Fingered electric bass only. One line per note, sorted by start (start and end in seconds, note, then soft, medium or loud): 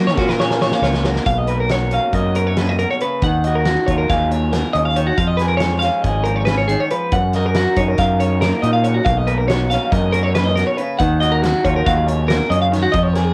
0.00 0.18 F#3 medium
0.18 0.71 A#2 medium
0.82 1.18 C#2 medium
1.26 1.97 B1 medium
2.13 2.84 F#2 medium
3.22 3.75 D#2 medium
3.88 4.05 D#2 medium
4.09 4.62 D#2 loud
4.75 5.10 D#2 medium
5.18 5.88 F2 medium
6.04 6.75 G#1 medium
7.12 7.65 F#2 medium
7.77 7.94 F#2 medium
7.98 8.51 F#2 loud
8.63 8.98 A#2 medium
9.06 9.76 B1 medium
9.92 10.62 F#2 medium
11.00 11.53 D#2 medium
11.64 11.82 D#2 medium
11.86 12.39 D#2 loud
12.50 12.85 F#2 medium
12.94 13.34 F2 medium